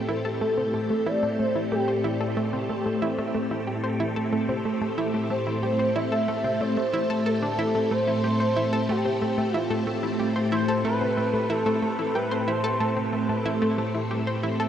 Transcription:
Already playing: string machine A2 A3 C4 G4 A4, synth texture A3 A4
0.09 synth arpeggio sound E4, analog synth lead A4
0.25 synth arpeggio sound A4
0.41 synth arpeggio sound A3
0.58 synth arpeggio sound C4
0.74 synth arpeggio sound A3
0.90 synth arpeggio sound A3
1.06 synth arpeggio sound E4, analog synth lead D5
1.23 synth arpeggio sound A3
1.39 synth arpeggio sound A3, analog synth lead C5
1.55 synth arpeggio sound E4
1.72 analog synth lead G4, synth arpeggio sound G4
1.88 synth arpeggio sound C5
2.04 synth arpeggio sound E4
2.21 synth arpeggio sound A4
2.37 synth arpeggio sound A3
2.53 synth arpeggio sound C4
2.69 synth arpeggio sound A3, synth texture B5
2.86 synth arpeggio sound A3
3.02 synth arpeggio sound E4
3.18 synth arpeggio sound A3
3.35 synth arpeggio sound A3
3.51 synth arpeggio sound E4
3.67 synth arpeggio sound G4
3.84 synth arpeggio sound C5
4.00 synth arpeggio sound E4
4.16 synth arpeggio sound A4
4.33 synth arpeggio sound A3
4.49 synth arpeggio sound C4
4.65 synth arpeggio sound A3
4.81 synth arpeggio sound A3
4.98 synth arpeggio sound E4
5.14 synth arpeggio sound A3
5.30 synth arpeggio sound A3, analog synth lead C5
5.47 synth arpeggio sound E4
5.63 synth arpeggio sound G4
5.79 synth arpeggio sound C5
5.95 synth arpeggio sound E4, analog synth lead E5
6.12 synth arpeggio sound A4
6.28 synth arpeggio sound A3
6.44 synth arpeggio sound C4
6.61 synth arpeggio sound A3, analog synth lead C5
6.77 synth arpeggio sound A3
6.93 synth arpeggio sound E4
7.10 synth arpeggio sound A4
7.26 analog synth lead A4, synth arpeggio sound A4
7.42 synth arpeggio sound D4
7.59 synth arpeggio sound E4
7.75 synth arpeggio sound A3
7.91 synth arpeggio sound A3, synth texture A4, analog synth lead C5
8.08 synth arpeggio sound E4
8.24 synth arpeggio sound G4
8.40 synth arpeggio sound C5
8.56 synth arpeggio sound E4
8.73 synth arpeggio sound A4
8.89 synth arpeggio sound A3, analog synth lead G4
9.05 synth arpeggio sound C4
9.22 synth arpeggio sound A3
9.38 synth arpeggio sound A3
9.54 synth arpeggio sound E4, analog synth lead F4
9.70 synth arpeggio sound A3
9.87 synth arpeggio sound A3
10.03 synth arpeggio sound E4
10.20 synth arpeggio sound G4
10.36 synth arpeggio sound C5
10.52 synth arpeggio sound E4, analog synth lead C5
10.68 synth arpeggio sound A4
10.85 synth arpeggio sound A3, analog synth lead B4
11.01 synth arpeggio sound C4
11.17 synth arpeggio sound A3
11.34 synth arpeggio sound A3
11.50 synth arpeggio sound E4, analog synth lead A4
11.66 synth arpeggio sound A3
11.82 synth arpeggio sound A3
11.99 synth arpeggio sound E4
12.15 synth arpeggio sound G4, analog synth lead B4
12.31 synth arpeggio sound C5
12.48 synth arpeggio sound E4, analog synth lead C5
12.64 synth arpeggio sound A4
12.80 synth arpeggio sound A3
12.97 synth arpeggio sound C4
13.13 synth arpeggio sound A3, synth texture B5
13.29 synth arpeggio sound A3
13.46 synth arpeggio sound E4
13.62 synth arpeggio sound A3
13.78 synth arpeggio sound A3
13.95 synth arpeggio sound E4
14.11 synth arpeggio sound G4
14.27 synth arpeggio sound C5
14.43 synth arpeggio sound E4
14.60 synth arpeggio sound A4

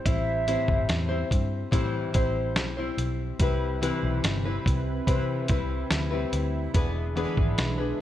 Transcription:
0.05 picked electric bass A1, nylon-string guitar G3 C4 E4 C5, soft synth lead E5, kick, closed hi-hat
0.47 nylon-string guitar A2 E3 G3 C4 E4 C5, closed hi-hat
0.68 picked electric bass G1, kick
0.89 picked electric bass E2, snare, closed hi-hat
1.09 nylon-string guitar G3 C4 E4 C5
1.31 picked electric bass G2, kick, closed hi-hat
1.71 nylon-string guitar A2 E3 G3 C4 E4 C5, picked electric bass A2, kick, closed hi-hat
2.13 picked electric bass A1, nylon-string guitar G3 C4 E4 C5, kick, closed hi-hat
2.56 picked electric bass B1, snare, closed hi-hat
2.77 nylon-string guitar G3 C4 E4 C5
2.98 picked electric bass B1, closed hi-hat
3.39 picked electric bass C2, analog synth pad C3 E4 B4, nylon-string guitar G3 C4 E4 B4, kick, closed hi-hat
3.81 nylon-string guitar C3 E3 G3 C4 E4 B4, closed hi-hat
4.03 picked electric bass B1
4.23 picked electric bass G1, snare, closed hi-hat
4.45 nylon-string guitar G3 C4 E4 B4
4.66 picked electric bass C2, kick, closed hi-hat
5.07 nylon-string guitar C3 E3 G3 C4 E4 B4, picked electric bass C3, kick, closed hi-hat
5.48 picked electric bass C2, nylon-string guitar G3 C4 E4 B4, kick, closed hi-hat
5.90 picked electric bass D2, snare, closed hi-hat
6.11 nylon-string guitar G3 C4 E4 B4
6.33 picked electric bass D2, closed hi-hat
6.74 picked electric bass E1, analog synth pad D3 G#3, nylon-string guitar B3 D4 G#4 B4, kick, closed hi-hat
7.15 nylon-string guitar E3 B3 D4 G#4 B4, closed hi-hat
7.37 picked electric bass G#1, kick
7.58 picked electric bass B1, snare, closed hi-hat
7.78 nylon-string guitar D4 G#4 B4

